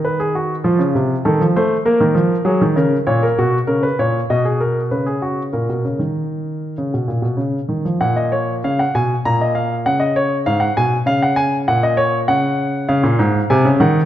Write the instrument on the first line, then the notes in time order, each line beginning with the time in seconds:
grand piano
Already playing: D#3
0.05 B4
0.20 G#4
0.35 F#4
0.64 F3 F4
0.79 C#3
0.95 C3
1.25 D#3 A4
1.41 F3
1.56 A3 C5
1.85 A#3 A#4
2.00 D#3
2.15 F3
2.45 F#3 G#4
2.61 D#3
2.76 C#3 A#4
3.07 A#2 C#5
3.23 A#4
3.38 B2 F#4
3.67 C#3 A#4
3.83 B4
3.99 A#2 C#5
4.30 B2 D#5
4.45 G#4
4.60 A#4
4.91 C#3 B4
5.06 G#4
5.22 F#4
5.53 A#2 A#4
5.69 B2
5.85 C#3
5.99 D#3
6.78 C#3
6.94 B2
7.08 A#2
7.22 B2
7.37 C#3
7.69 D#3
7.85 F3
8.01 A#2 F#5
8.16 D#5
8.32 C#5
8.64 C#3 F5
8.79 F#5
8.95 B2 G#5
9.25 A#2 A#5
9.41 D#5
9.55 F5
9.86 C#3 F#5
10.00 D#5
10.16 C#5
10.46 G#2 F5
10.60 F#5
10.77 B2 G#5
11.06 C#3 F5
11.23 F#5
11.36 G#5
11.68 A#2 F#5
11.83 D#5
11.97 C#5
12.28 C#3 F#5
12.89 C#3 F5
13.03 A#2
13.19 G#2
13.50 C3 G#5
13.65 C#3
13.80 D#3 F#5